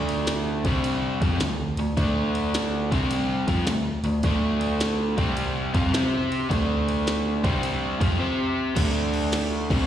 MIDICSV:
0, 0, Header, 1, 4, 480
1, 0, Start_track
1, 0, Key_signature, -1, "minor"
1, 0, Tempo, 565504
1, 1681, Time_signature, 4, 2, 24, 8
1, 8374, End_track
2, 0, Start_track
2, 0, Title_t, "Overdriven electric guitar"
2, 0, Program_c, 0, 29
2, 0, Note_on_c, 0, 50, 87
2, 0, Note_on_c, 0, 57, 96
2, 0, Note_on_c, 0, 62, 101
2, 545, Note_off_c, 0, 50, 0
2, 547, Note_off_c, 0, 57, 0
2, 547, Note_off_c, 0, 62, 0
2, 552, Note_on_c, 0, 48, 85
2, 557, Note_on_c, 0, 55, 88
2, 567, Note_on_c, 0, 60, 113
2, 1025, Note_off_c, 0, 60, 0
2, 1026, Note_off_c, 0, 48, 0
2, 1028, Note_off_c, 0, 55, 0
2, 1033, Note_on_c, 0, 53, 92
2, 1036, Note_on_c, 0, 60, 90
2, 1044, Note_on_c, 0, 65, 86
2, 1193, Note_off_c, 0, 53, 0
2, 1194, Note_off_c, 0, 60, 0
2, 1198, Note_off_c, 0, 65, 0
2, 1198, Note_on_c, 0, 50, 60
2, 1202, Note_on_c, 0, 57, 63
2, 1453, Note_off_c, 0, 50, 0
2, 1455, Note_off_c, 0, 57, 0
2, 1519, Note_on_c, 0, 50, 61
2, 1523, Note_on_c, 0, 57, 75
2, 1648, Note_off_c, 0, 50, 0
2, 1651, Note_off_c, 0, 57, 0
2, 1671, Note_on_c, 0, 50, 93
2, 1674, Note_on_c, 0, 57, 96
2, 1674, Note_on_c, 0, 62, 105
2, 2464, Note_off_c, 0, 50, 0
2, 2466, Note_off_c, 0, 57, 0
2, 2466, Note_off_c, 0, 62, 0
2, 2470, Note_on_c, 0, 48, 86
2, 2474, Note_on_c, 0, 55, 99
2, 2479, Note_on_c, 0, 60, 98
2, 2945, Note_off_c, 0, 48, 0
2, 2945, Note_off_c, 0, 60, 0
2, 2947, Note_off_c, 0, 55, 0
2, 2952, Note_on_c, 0, 53, 94
2, 2955, Note_on_c, 0, 65, 101
2, 2956, Note_on_c, 0, 60, 95
2, 3112, Note_off_c, 0, 53, 0
2, 3115, Note_off_c, 0, 60, 0
2, 3115, Note_off_c, 0, 65, 0
2, 3116, Note_on_c, 0, 50, 60
2, 3123, Note_on_c, 0, 57, 69
2, 3372, Note_off_c, 0, 50, 0
2, 3376, Note_off_c, 0, 57, 0
2, 3439, Note_on_c, 0, 50, 64
2, 3443, Note_on_c, 0, 57, 65
2, 3569, Note_off_c, 0, 50, 0
2, 3571, Note_off_c, 0, 57, 0
2, 3603, Note_on_c, 0, 50, 87
2, 3608, Note_on_c, 0, 62, 101
2, 3610, Note_on_c, 0, 57, 104
2, 4387, Note_off_c, 0, 50, 0
2, 4390, Note_off_c, 0, 57, 0
2, 4390, Note_on_c, 0, 48, 82
2, 4393, Note_off_c, 0, 62, 0
2, 4393, Note_on_c, 0, 55, 110
2, 4398, Note_on_c, 0, 60, 96
2, 4865, Note_off_c, 0, 48, 0
2, 4866, Note_off_c, 0, 55, 0
2, 4869, Note_off_c, 0, 60, 0
2, 4873, Note_on_c, 0, 53, 91
2, 4878, Note_on_c, 0, 60, 87
2, 4882, Note_on_c, 0, 65, 90
2, 5027, Note_off_c, 0, 60, 0
2, 5034, Note_off_c, 0, 53, 0
2, 5037, Note_on_c, 0, 60, 89
2, 5038, Note_off_c, 0, 65, 0
2, 5042, Note_on_c, 0, 67, 92
2, 5045, Note_on_c, 0, 72, 92
2, 5507, Note_off_c, 0, 60, 0
2, 5508, Note_on_c, 0, 50, 78
2, 5510, Note_on_c, 0, 57, 101
2, 5512, Note_off_c, 0, 67, 0
2, 5516, Note_on_c, 0, 62, 105
2, 5518, Note_off_c, 0, 72, 0
2, 6302, Note_off_c, 0, 50, 0
2, 6303, Note_off_c, 0, 57, 0
2, 6306, Note_off_c, 0, 62, 0
2, 6312, Note_on_c, 0, 48, 96
2, 6317, Note_on_c, 0, 60, 100
2, 6319, Note_on_c, 0, 55, 102
2, 6784, Note_off_c, 0, 60, 0
2, 6785, Note_off_c, 0, 48, 0
2, 6789, Note_off_c, 0, 55, 0
2, 6792, Note_on_c, 0, 53, 88
2, 6794, Note_on_c, 0, 60, 86
2, 6803, Note_on_c, 0, 65, 93
2, 6939, Note_off_c, 0, 60, 0
2, 6949, Note_on_c, 0, 60, 83
2, 6952, Note_off_c, 0, 53, 0
2, 6953, Note_off_c, 0, 65, 0
2, 6957, Note_on_c, 0, 67, 83
2, 6961, Note_on_c, 0, 72, 94
2, 7427, Note_off_c, 0, 60, 0
2, 7427, Note_on_c, 0, 50, 96
2, 7429, Note_off_c, 0, 67, 0
2, 7431, Note_on_c, 0, 57, 91
2, 7432, Note_on_c, 0, 62, 105
2, 7435, Note_off_c, 0, 72, 0
2, 8220, Note_off_c, 0, 50, 0
2, 8222, Note_off_c, 0, 57, 0
2, 8222, Note_off_c, 0, 62, 0
2, 8234, Note_on_c, 0, 48, 92
2, 8235, Note_on_c, 0, 55, 101
2, 8240, Note_on_c, 0, 60, 106
2, 8374, Note_off_c, 0, 48, 0
2, 8374, Note_off_c, 0, 55, 0
2, 8374, Note_off_c, 0, 60, 0
2, 8374, End_track
3, 0, Start_track
3, 0, Title_t, "Picked electric bass"
3, 0, Program_c, 1, 34
3, 0, Note_on_c, 1, 38, 90
3, 520, Note_off_c, 1, 38, 0
3, 548, Note_on_c, 1, 36, 97
3, 999, Note_off_c, 1, 36, 0
3, 1026, Note_on_c, 1, 41, 90
3, 1182, Note_off_c, 1, 41, 0
3, 1194, Note_on_c, 1, 38, 77
3, 1492, Note_off_c, 1, 38, 0
3, 1507, Note_on_c, 1, 38, 79
3, 1663, Note_off_c, 1, 38, 0
3, 1676, Note_on_c, 1, 38, 97
3, 2443, Note_off_c, 1, 38, 0
3, 2471, Note_on_c, 1, 36, 89
3, 2921, Note_off_c, 1, 36, 0
3, 2955, Note_on_c, 1, 41, 84
3, 3100, Note_off_c, 1, 41, 0
3, 3106, Note_on_c, 1, 38, 87
3, 3408, Note_off_c, 1, 38, 0
3, 3426, Note_on_c, 1, 38, 69
3, 3583, Note_off_c, 1, 38, 0
3, 3597, Note_on_c, 1, 38, 88
3, 4362, Note_off_c, 1, 38, 0
3, 4397, Note_on_c, 1, 36, 96
3, 4844, Note_off_c, 1, 36, 0
3, 4873, Note_on_c, 1, 41, 89
3, 5014, Note_off_c, 1, 41, 0
3, 5020, Note_on_c, 1, 48, 99
3, 5476, Note_off_c, 1, 48, 0
3, 5520, Note_on_c, 1, 38, 90
3, 6283, Note_off_c, 1, 38, 0
3, 6317, Note_on_c, 1, 36, 95
3, 6763, Note_off_c, 1, 36, 0
3, 6794, Note_on_c, 1, 41, 84
3, 6946, Note_off_c, 1, 41, 0
3, 7441, Note_on_c, 1, 38, 98
3, 8202, Note_off_c, 1, 38, 0
3, 8235, Note_on_c, 1, 36, 85
3, 8374, Note_off_c, 1, 36, 0
3, 8374, End_track
4, 0, Start_track
4, 0, Title_t, "Drums"
4, 74, Note_on_c, 9, 51, 75
4, 159, Note_off_c, 9, 51, 0
4, 228, Note_on_c, 9, 51, 102
4, 232, Note_on_c, 9, 38, 110
4, 313, Note_off_c, 9, 51, 0
4, 317, Note_off_c, 9, 38, 0
4, 549, Note_on_c, 9, 51, 74
4, 551, Note_on_c, 9, 36, 99
4, 634, Note_off_c, 9, 51, 0
4, 636, Note_off_c, 9, 36, 0
4, 713, Note_on_c, 9, 51, 98
4, 798, Note_off_c, 9, 51, 0
4, 1031, Note_on_c, 9, 36, 113
4, 1032, Note_on_c, 9, 51, 73
4, 1116, Note_off_c, 9, 36, 0
4, 1117, Note_off_c, 9, 51, 0
4, 1189, Note_on_c, 9, 51, 95
4, 1194, Note_on_c, 9, 38, 109
4, 1274, Note_off_c, 9, 51, 0
4, 1278, Note_off_c, 9, 38, 0
4, 1505, Note_on_c, 9, 51, 71
4, 1590, Note_off_c, 9, 51, 0
4, 1674, Note_on_c, 9, 36, 104
4, 1674, Note_on_c, 9, 51, 87
4, 1759, Note_off_c, 9, 36, 0
4, 1759, Note_off_c, 9, 51, 0
4, 1995, Note_on_c, 9, 51, 71
4, 2079, Note_off_c, 9, 51, 0
4, 2158, Note_on_c, 9, 51, 95
4, 2162, Note_on_c, 9, 38, 107
4, 2243, Note_off_c, 9, 51, 0
4, 2247, Note_off_c, 9, 38, 0
4, 2475, Note_on_c, 9, 36, 96
4, 2479, Note_on_c, 9, 51, 76
4, 2560, Note_off_c, 9, 36, 0
4, 2564, Note_off_c, 9, 51, 0
4, 2636, Note_on_c, 9, 51, 110
4, 2721, Note_off_c, 9, 51, 0
4, 2952, Note_on_c, 9, 36, 105
4, 2952, Note_on_c, 9, 51, 82
4, 3037, Note_off_c, 9, 36, 0
4, 3037, Note_off_c, 9, 51, 0
4, 3112, Note_on_c, 9, 51, 105
4, 3117, Note_on_c, 9, 38, 108
4, 3197, Note_off_c, 9, 51, 0
4, 3202, Note_off_c, 9, 38, 0
4, 3426, Note_on_c, 9, 51, 67
4, 3511, Note_off_c, 9, 51, 0
4, 3591, Note_on_c, 9, 51, 91
4, 3596, Note_on_c, 9, 36, 98
4, 3676, Note_off_c, 9, 51, 0
4, 3681, Note_off_c, 9, 36, 0
4, 3912, Note_on_c, 9, 51, 71
4, 3997, Note_off_c, 9, 51, 0
4, 4077, Note_on_c, 9, 51, 102
4, 4082, Note_on_c, 9, 38, 110
4, 4162, Note_off_c, 9, 51, 0
4, 4167, Note_off_c, 9, 38, 0
4, 4395, Note_on_c, 9, 36, 112
4, 4395, Note_on_c, 9, 51, 70
4, 4480, Note_off_c, 9, 36, 0
4, 4480, Note_off_c, 9, 51, 0
4, 4555, Note_on_c, 9, 51, 93
4, 4640, Note_off_c, 9, 51, 0
4, 4876, Note_on_c, 9, 36, 103
4, 4876, Note_on_c, 9, 51, 75
4, 4961, Note_off_c, 9, 36, 0
4, 4961, Note_off_c, 9, 51, 0
4, 5042, Note_on_c, 9, 51, 92
4, 5046, Note_on_c, 9, 38, 117
4, 5127, Note_off_c, 9, 51, 0
4, 5131, Note_off_c, 9, 38, 0
4, 5363, Note_on_c, 9, 51, 67
4, 5447, Note_off_c, 9, 51, 0
4, 5522, Note_on_c, 9, 36, 105
4, 5525, Note_on_c, 9, 51, 87
4, 5606, Note_off_c, 9, 36, 0
4, 5610, Note_off_c, 9, 51, 0
4, 5844, Note_on_c, 9, 51, 66
4, 5929, Note_off_c, 9, 51, 0
4, 6002, Note_on_c, 9, 51, 90
4, 6006, Note_on_c, 9, 38, 106
4, 6087, Note_off_c, 9, 51, 0
4, 6091, Note_off_c, 9, 38, 0
4, 6316, Note_on_c, 9, 36, 108
4, 6318, Note_on_c, 9, 51, 66
4, 6401, Note_off_c, 9, 36, 0
4, 6403, Note_off_c, 9, 51, 0
4, 6477, Note_on_c, 9, 51, 98
4, 6562, Note_off_c, 9, 51, 0
4, 6797, Note_on_c, 9, 36, 107
4, 6801, Note_on_c, 9, 51, 84
4, 6882, Note_off_c, 9, 36, 0
4, 6886, Note_off_c, 9, 51, 0
4, 7439, Note_on_c, 9, 36, 100
4, 7439, Note_on_c, 9, 49, 110
4, 7439, Note_on_c, 9, 57, 87
4, 7524, Note_off_c, 9, 36, 0
4, 7524, Note_off_c, 9, 49, 0
4, 7524, Note_off_c, 9, 57, 0
4, 7755, Note_on_c, 9, 57, 65
4, 7840, Note_off_c, 9, 57, 0
4, 7914, Note_on_c, 9, 57, 84
4, 7918, Note_on_c, 9, 38, 105
4, 7999, Note_off_c, 9, 57, 0
4, 8003, Note_off_c, 9, 38, 0
4, 8237, Note_on_c, 9, 36, 112
4, 8240, Note_on_c, 9, 57, 64
4, 8322, Note_off_c, 9, 36, 0
4, 8325, Note_off_c, 9, 57, 0
4, 8374, End_track
0, 0, End_of_file